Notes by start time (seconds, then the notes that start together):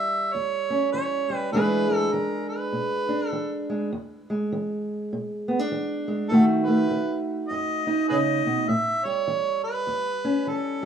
Already playing: E3 G3 E5
0.34 E2 C#5
0.70 C#4
0.93 E3 C#5
1.30 G3
1.37 B4
1.53 E2 E3 G#3 D4 G#4 B4
1.90 G#3
1.97 A4
2.12 E3 A#4
2.49 B4
2.73 B2
3.09 D4
3.28 A4
3.32 E3
3.70 G#3
3.92 E2
4.30 G#3
4.52 E3
5.13 B2
5.48 B3
5.59 D4
5.72 E3
6.08 G#3
6.29 B2 D#3 A3 D#4 A4
6.34 F#4
6.64 A3 B4
6.91 D#3
7.48 F#2 D#5
7.87 D#4
8.09 C#3 G#4 B4 D#5
8.46 B2
8.68 A2 E5
9.05 G3 C#5
9.28 E3
9.64 B4
9.87 E2
10.25 C#4
10.47 E3 A4